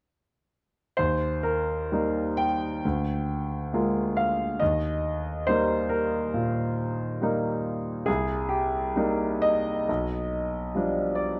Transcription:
0.97 D#2 C5
1.43 A#4
1.92 G3 A#3 D#4
2.37 G5
2.85 D2
3.73 G#3 A#3 F4
4.17 F5
4.59 D#2 D#5
5.47 G3 A#3 D#4 C5
5.89 A#4
6.34 A#2
7.22 G3 A#3 D#4
8.06 C2 G#4
8.49 G4
8.96 G3 A#3 D#4
9.42 D#5
9.89 B1
10.75 F3 G3 D4
11.15 D5

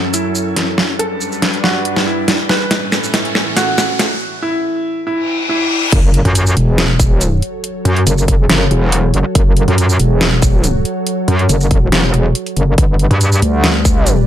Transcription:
Already playing: F#2 F#3 C#4 A4, riser
0.14 E4, closed hi-hat, shaker
0.35 shaker
0.56 snare, closed hi-hat
0.78 G2 G3 D4 B4, snare
0.99 A4, closed hi-hat
1.21 shaker
1.32 shaker
1.42 snare, closed hi-hat
1.54 closed hi-hat
1.64 F#4, snare
1.85 closed hi-hat
1.96 snare
2.06 E4
2.28 snare, closed hi-hat
2.49 A2 E3 C#4 A4 B4, snare
2.71 snare, closed hi-hat
2.92 snare, shaker
3.04 shaker
3.14 snare, closed hi-hat
3.25 closed hi-hat
3.35 snare
3.56 F#4, snare, closed hi-hat, shaker
3.78 snare, shaker
3.99 snare, closed hi-hat
4.42 E4
5.07 E4, reverse cymbal
5.49 E4
5.92 F#1 F#3 F#4 A4 C#5, kick, closed hi-hat, crash, impact
6.14 closed hi-hat
6.25 F#2, closed hi-hat
6.35 closed hi-hat, shaker
6.47 shaker
6.57 E1, closed hi-hat
6.78 snare, closed hi-hat
7.00 kick, closed hi-hat, shaker
7.21 closed hi-hat, shaker
7.42 closed hi-hat
7.64 closed hi-hat
7.85 F#2, closed hi-hat
7.97 closed hi-hat
8.07 F#1, closed hi-hat, shaker
8.18 shaker
8.28 kick, closed hi-hat
8.49 F#1, snare, closed hi-hat
8.71 E1, closed hi-hat
8.92 closed hi-hat
9.14 F#1, closed hi-hat
9.35 F#1, kick, closed hi-hat
9.57 closed hi-hat
9.68 F#2, closed hi-hat
9.78 closed hi-hat, shaker
9.89 shaker
9.99 E1, closed hi-hat
10.21 snare, closed hi-hat
10.42 kick, closed hi-hat, shaker
10.64 closed hi-hat, shaker
10.85 closed hi-hat
11.07 closed hi-hat
11.28 F#2, closed hi-hat
11.39 closed hi-hat
11.49 F#1, closed hi-hat, shaker
11.61 shaker
11.71 kick, closed hi-hat
11.92 E1, snare, closed hi-hat
12.14 E1, closed hi-hat
12.35 closed hi-hat
12.46 closed hi-hat
12.57 F#1, closed hi-hat
12.78 G1 G3 G4 B4 D5, kick, closed hi-hat
12.99 closed hi-hat
13.11 G2, closed hi-hat
13.21 closed hi-hat, shaker
13.32 shaker
13.42 D2, closed hi-hat
13.64 snare, closed hi-hat
13.85 kick, closed hi-hat, shaker
14.07 closed hi-hat, shaker

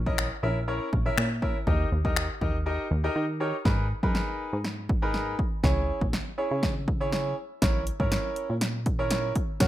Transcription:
Already playing: A#1
0.06 C#4 E4 A#4 D#5, kick
0.18 finger snap
0.43 A#1 C#4 E4 A#4 E5
0.68 C#4 E4 A#4 C#5
0.93 A#1, kick
1.06 C#4 E4 A#4 E5
1.18 A#2, finger snap
1.42 C#4 E4 A#4 E5, kick
1.67 D#2 D#4 G4 A#4 D#5, kick
1.92 D#2
2.05 D#4 G4 A#4 D#5, kick
2.16 finger snap
2.41 D#2 D#4 G4 A#4 D#5, kick
2.66 D#4 G4 A#4 D#5
2.91 D#2
3.04 D#4 G4 A#4 D#5
3.16 D#3
3.40 D#4 G4 A#4 C#5
3.65 G#2 D#4 G#4 A#4 B4, kick, snare
4.03 F#2 D#4 G#4 A#4 B4, kick
4.15 snare
4.53 G#2
4.64 snare
4.89 kick
5.02 D#4 G#4 A#4 B4
5.14 snare
5.39 kick
5.63 C#2 C#4 E4 G#4 C#5, kick, snare
6.01 A#1, kick
6.13 snare
6.38 C#4 E4 G#4 C#5
6.51 C#3
6.63 kick, snare
6.88 kick
7.00 C#4 E4 G#4 C#5
7.12 snare
7.62 A#1 C#4 E4 A#4 C#5, kick, snare, closed hi-hat
7.87 closed hi-hat
8.00 G#1 C#4 E4 A#4 C#5, kick
8.12 snare, closed hi-hat
8.36 closed hi-hat
8.50 A#2
8.61 snare, closed hi-hat
8.86 kick, closed hi-hat
8.99 C#4 E4 A#4 C#5
9.11 snare, closed hi-hat
9.36 kick, closed hi-hat
9.60 A#1 C#4 F#4 A#4 C#5, kick, snare, closed hi-hat

